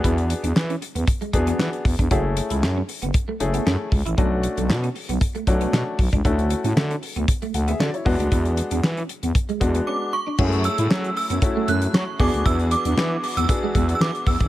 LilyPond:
<<
  \new Staff \with { instrumentName = "Synth bell" } { \time 4/4 \key e \mixolydian \tempo 4 = 116 r1 | r1 | r1 | r1 |
r2. d'''8 cis'''8~ | cis'''8 e'''4 e'''4 fis'''8 cis'''8 d'''8 | e'''8 d'''4 d'''16 e'''4~ e'''32 e'''32 d'''8 e'''8 | }
  \new Staff \with { instrumentName = "Grand piano" } { \time 4/4 \key e \mixolydian << { r1 | r1 | r1 | r2 r8 <a' fis''>16 <gis' e''>16 <fis' d''>16 <e' cis''>8 r16 |
r1 | r1 | r1 | } \\ { <b d' fis' gis'>4 r4. <b d' fis' gis'>4 r8 | <a cis' e' gis'>4~ <a cis' e' gis'>16 r4 r16 <a cis' e' gis'>4 r8 | <a cis' d' fis'>4~ <a cis' d' fis'>16 r4 r16 <a cis' d' fis'>4 r8 | <a cis' e' fis'>4~ <a cis' e' fis'>16 r2 r16 <gis b d' fis'>8~ |
<gis b d' fis'>4 r4. <gis b d' fis'>4 r8 | <gis a cis' e' gis'>4~ <gis a cis' e' gis'>16 r8. <a cis' e' fis'>4~ <a cis' e' fis'>16 r16 <b d' fis' gis'>8~ | <b d' fis' gis'>4 r4 <b d' fis' gis'>4~ <b d' fis' gis'>16 r8. | } >> }
  \new Staff \with { instrumentName = "Clean electric guitar" } { \time 4/4 \key e \mixolydian e'16 r8 d'16 r16 cis'16 r16 b16 r16 gis16 r16 b16 cis'16 r8 d'16 | fis'16 r8 e'16 r16 cis'16 r16 b16 r16 a16 r16 b16 cis'16 r8 e'16 | b16 r8 a16 r16 cis'16 r16 b16 r16 a16 r16 b16 cis'16 r8 d'16 | d'16 r8 cis'16 r16 cis'16 r16 b16 r16 a16 r16 b16 cis'16 r8 d'16 |
e'16 r8 d'16 r16 cis'16 r16 b16 r16 gis16 r16 b16 cis'16 r8 d'16 | fis'16 r8 e'16 cis'16 r8 b16 r16 a16 a16 r8. b16 r16 | e'16 r8 d'16 cis'16 r8 b16 r16 gis16 gis16 r8. b16 r16 | }
  \new Staff \with { instrumentName = "Analog synth pad" } { \time 4/4 \key e \mixolydian r1 | r1 | r1 | r1 |
r1 | <fis a e' gis'>2.~ <fis a e' gis'>8 <e b d' fis'>8~ | <e b d' fis'>1 | }
  \new Staff \with { instrumentName = "FM bass" } { \clef bass \time 4/4 \key e \mixolydian e,8. e,16 e8 r16 e,16 r8 e,8 e16 r16 e,16 e,16 | fis,,8. cis,16 fis,8 r16 fis,,16 r8 fis,,8 fis,16 r16 cis,16 a,,16 | b,,8. b,,16 b,8 r16 b,,16 r8 b,,8 b,16 r16 b,,16 cis,16 | d,8. a,16 d8 r16 d,16 r8 d,8 d16 r16 e,16 d,16 |
e,8. e,16 e8 r16 e,16 r8 e,8 r4 | fis,8. a,16 fis8 r16 fis,16 r8 fis,8 fis16 r16 e,16 d,16 | e,8. e,16 e8 r16 e,16 r8 e,8 e16 r16 e,16 gis,,16 | }
  \new DrumStaff \with { instrumentName = "Drums" } \drummode { \time 4/4 <hh bd>16 hh16 hh16 hh16 <hc sn>16 hh16 hh16 hh16 <hh bd>16 hh16 <hh bd>16 hh16 <hc sn>16 hh16 <hho bd>16 <hh bd>16 | <hh bd>8 hh16 hh16 <hc sn>8 hho16 hh16 <hh bd>8 hh16 hh16 <hc sn>8 <hho bd>16 hh16 | <hh bd>8 hh16 hh16 <hc sn>16 hh16 hho16 hh16 <hh bd>16 hh16 <hh bd>16 hh16 <hc sn>8 <hho bd>16 <hh bd>16 | <hh bd>16 hh16 hh16 hh16 <hc sn>16 hh16 hho16 hh16 <hh bd>16 hh16 hh16 hh16 <hc sn>16 hh16 <hho bd>16 hh16 |
<hh bd>16 hh16 hh16 hh16 <hc sn>16 hh16 hh16 hh16 <hh bd>16 hh16 <hh bd>16 hh16 r4 | <cymc bd>16 hh16 hh16 hh16 <hc sn>16 hh16 hho16 hh16 <hh bd>8 hh16 hh16 <hc sn>8 <hho bd>16 hh16 | <hh bd>16 hh16 hh16 hh16 <hc sn>8 hho16 hh16 <hh bd>8 <hh bd>16 hh16 <hc sn>16 hh16 <hho bd>16 <hh bd>16 | }
>>